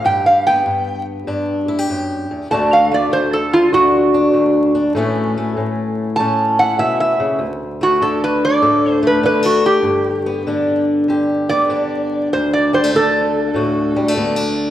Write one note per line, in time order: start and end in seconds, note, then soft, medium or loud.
0.04 0.65 G2 medium
0.04 1.68 G4 medium
0.04 0.25 G5 medium
0.26 0.45 F5 medium
0.47 2.48 B3 medium
0.47 1.05 G5 medium
0.66 1.26 G2 medium
1.27 1.88 G2 medium
1.27 2.47 D4 medium
1.68 1.79 E4 medium
1.79 2.50 G4 medium
1.90 2.30 F#2 medium
2.31 2.50 E2 medium
2.51 3.10 D2 medium
2.51 4.95 D3 medium
2.51 2.91 A3 medium
2.51 3.72 D4 medium
2.51 4.94 F#4 medium
2.51 2.70 A5 medium
2.73 2.91 F5 medium
2.91 4.96 A3 medium
2.91 3.12 D5 medium
3.11 3.71 D2 medium
3.11 3.32 C5 medium
3.33 3.52 A4 medium
3.54 3.72 F4 medium
3.73 4.32 D2 medium
3.73 4.13 D4 medium
3.73 5.53 F#4 medium
4.14 4.74 D4 medium
4.33 4.95 D2 medium
4.75 4.92 D4 medium
4.95 5.55 A2 medium
4.95 7.38 E3 medium
4.95 5.37 A3 medium
4.95 6.19 C#4 medium
4.95 6.59 E4 medium
5.38 7.38 A3 medium
5.57 6.18 A2 medium
6.16 6.78 A2 medium
6.16 7.39 C#4 medium
6.16 6.56 A5 medium
6.59 7.41 E4 medium
6.59 6.78 F#5 medium
6.79 7.19 B2 medium
6.79 6.99 E5 medium
7.00 7.39 E5 medium
7.20 7.40 C#3 medium
7.39 9.82 D2 medium
7.81 9.01 A3 medium
7.81 8.02 F#4 medium
8.01 9.22 D3 medium
8.01 9.23 D4 medium
8.01 8.22 A4 medium
8.24 8.43 B4 medium
8.45 8.91 D5 medium
8.62 9.24 A2 medium
8.62 9.83 A4 medium
8.91 9.03 C5 medium
9.03 9.82 A3 medium
9.07 9.24 B4 medium
9.23 10.46 D3 medium
9.23 9.43 B3 medium
9.23 9.45 B4 medium
9.43 9.84 D4 soft
9.43 9.65 F#4 medium
9.66 10.84 G4 medium
9.83 12.27 G2 medium
10.26 11.49 B3 medium
10.47 11.07 D3 medium
10.47 11.70 D4 medium
11.08 11.68 D3 medium
11.08 12.29 G4 medium
11.49 12.29 B3 medium
11.49 12.29 D5 loud
11.69 12.94 D3 medium
11.69 12.95 D4 medium
12.33 14.70 D2 medium
12.33 12.52 C5 medium
12.54 12.72 D5 medium
12.73 12.84 G3 medium
12.73 12.93 C5 medium
12.84 13.96 A3 soft
12.94 14.16 D3 medium
12.94 14.17 D4 medium
12.94 14.13 A4 medium
13.54 14.15 A2 medium
13.54 14.70 F#4 medium
13.96 14.08 G3 medium
14.08 14.70 A3 soft
14.17 14.70 D3 medium
14.17 14.36 B3 medium
14.36 14.70 D4 soft